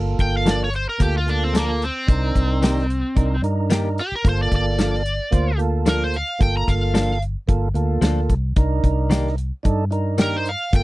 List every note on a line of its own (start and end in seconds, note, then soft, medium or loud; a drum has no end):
0.00 0.14 G1 medium
0.00 0.69 A#3 medium
0.00 0.70 F4 medium
0.00 0.70 A4 medium
0.19 0.85 G1 medium
0.19 0.34 G5 medium
0.19 kick medium
0.19 closed hi-hat medium
0.37 0.48 F5 medium
0.46 0.63 F3 medium
0.46 0.63 A#3 medium
0.46 0.64 D4 medium
0.46 0.64 A4 medium
0.46 snare loud
0.46 closed hi-hat medium
0.46 tambourine loud
0.50 0.62 D5 medium
0.64 0.75 C#5 medium
0.73 0.88 C5 medium
0.73 closed hi-hat medium
0.89 1.01 A#4 medium
0.99 1.89 D2 medium
0.99 1.19 A#3 medium
0.99 1.20 F4 medium
0.99 1.15 G4 medium
0.99 1.20 A4 medium
0.99 kick medium
0.99 closed hi-hat medium
1.18 1.28 F4 medium
1.26 1.86 A#3 medium
1.26 1.42 D4 medium
1.26 1.86 F4 medium
1.26 1.86 A4 medium
1.26 closed hi-hat medium
1.44 1.55 C4 medium
1.54 1.71 F3 medium
1.54 1.71 A#3 medium
1.54 1.72 D4 medium
1.54 1.72 A4 medium
1.54 snare loud
1.54 closed hi-hat medium
1.54 tambourine loud
1.58 1.82 A#3 medium
1.82 3.41 C4 medium
1.82 closed hi-hat medium
2.07 2.30 C2 medium
2.07 2.86 D4 medium
2.07 2.87 D#4 medium
2.07 2.87 A#4 medium
2.07 kick loud
2.07 closed hi-hat medium
2.35 3.02 C2 medium
2.35 kick medium
2.35 closed hi-hat medium
2.62 2.79 D#3 medium
2.62 2.79 A#3 medium
2.62 2.80 D4 medium
2.62 2.80 G4 medium
2.62 snare loud
2.62 closed hi-hat medium
2.62 tambourine loud
2.79 snare soft
2.90 closed hi-hat medium
3.15 3.38 C2 medium
3.15 3.36 D4 medium
3.15 3.36 D#4 medium
3.15 3.37 A#4 medium
3.15 kick medium
3.15 closed hi-hat medium
3.42 3.99 G2 medium
3.42 4.02 D4 medium
3.42 4.02 D#4 medium
3.42 4.02 A#4 medium
3.42 closed hi-hat medium
3.70 3.87 D#3 medium
3.70 3.87 A#3 medium
3.70 3.88 D4 medium
3.70 3.88 G4 medium
3.70 snare loud
3.70 closed hi-hat medium
3.70 tambourine loud
3.98 4.13 G4 medium
3.98 closed hi-hat medium
4.12 4.26 A#4 medium
4.12 muted fingered electric bass stroke soft
4.24 4.47 G1 loud
4.24 5.03 A#3 medium
4.24 5.03 F4 medium
4.24 5.03 A4 medium
4.24 kick loud
4.24 closed hi-hat medium
4.29 4.41 C5 medium
4.43 4.53 D5 medium
4.52 5.18 G1 medium
4.52 kick medium
4.52 closed hi-hat medium
4.56 5.58 D5 medium
4.79 4.95 F3 medium
4.79 4.96 A#3 medium
4.79 4.96 D4 medium
4.79 4.96 A4 medium
4.79 snare loud
4.79 closed hi-hat medium
4.79 tambourine loud
4.94 snare soft
5.06 closed hi-hat medium
5.31 6.21 D2 loud
5.31 5.52 A#3 medium
5.31 5.52 F4 medium
5.31 5.52 C5 loud
5.31 kick medium
5.31 closed hi-hat medium
5.58 6.17 A#3 medium
5.58 6.18 F4 medium
5.58 6.18 A4 medium
5.58 closed hi-hat medium
5.86 6.03 F3 medium
5.86 6.03 A#3 medium
5.86 6.04 D4 medium
5.86 6.04 A4 medium
5.86 6.02 A#4 loud
5.86 snare loud
5.86 closed hi-hat medium
5.86 tambourine loud
6.04 6.15 C5 medium
6.14 6.41 F5 medium
6.14 closed hi-hat medium
6.39 6.63 G1 medium
6.39 7.18 A#3 medium
6.39 7.19 F4 medium
6.39 7.19 A4 medium
6.39 6.56 G5 medium
6.39 kick loud
6.39 closed hi-hat medium
6.57 6.68 A#5 medium
6.68 7.34 G1 medium
6.68 7.21 F5 medium
6.68 kick medium
6.68 closed hi-hat medium
6.94 7.11 F3 medium
6.94 7.11 A#3 medium
6.94 7.11 D4 medium
6.94 7.12 A4 medium
6.94 snare loud
6.94 closed hi-hat medium
6.94 tambourine loud
7.11 snare soft
7.22 closed hi-hat medium
7.48 7.71 G1 medium
7.48 7.68 A#3 medium
7.48 7.69 F4 medium
7.48 7.69 A4 loud
7.48 kick medium
7.48 closed hi-hat medium
7.74 7.97 D2 medium
7.74 8.34 A#3 medium
7.74 8.34 F4 medium
7.74 8.35 A4 medium
7.74 closed hi-hat medium
8.01 8.26 D2 medium
8.01 8.19 F3 medium
8.01 8.19 A#3 medium
8.01 8.20 D4 medium
8.01 8.20 A4 medium
8.01 snare loud
8.01 closed hi-hat medium
8.01 tambourine loud
8.29 8.54 C2 medium
8.29 kick medium
8.29 closed hi-hat medium
8.56 8.79 C2 medium
8.56 9.35 D4 medium
8.56 9.35 D#4 medium
8.56 9.36 A#4 medium
8.56 kick loud
8.56 closed hi-hat medium
8.83 9.50 C2 medium
8.83 kick medium
8.83 closed hi-hat medium
9.10 9.27 D#3 medium
9.10 9.28 A#3 medium
9.10 9.28 D4 medium
9.10 9.28 G4 medium
9.10 snare loud
9.10 closed hi-hat medium
9.10 tambourine loud
9.27 snare soft
9.38 closed hi-hat medium
9.63 10.54 G2 loud
9.63 9.84 D4 medium
9.63 9.85 D#4 medium
9.63 9.85 A4 loud
9.63 kick medium
9.63 closed hi-hat medium
9.91 10.50 D4 medium
9.91 10.51 D#4 medium
9.91 10.51 A#4 medium
9.91 closed hi-hat medium
10.18 10.35 D#3 medium
10.18 10.36 A#3 medium
10.18 10.36 D4 medium
10.18 10.36 G4 medium
10.18 snare loud
10.18 closed hi-hat medium
10.18 tambourine loud
10.23 10.35 A#4 medium
10.37 10.47 C5 medium
10.46 10.74 F5 medium
10.46 closed hi-hat medium
10.72 10.83 G1 medium
10.72 10.83 A#3 medium
10.72 10.83 F4 medium
10.72 10.83 A4 medium
10.72 10.83 G5 medium
10.72 kick loud
10.72 closed hi-hat medium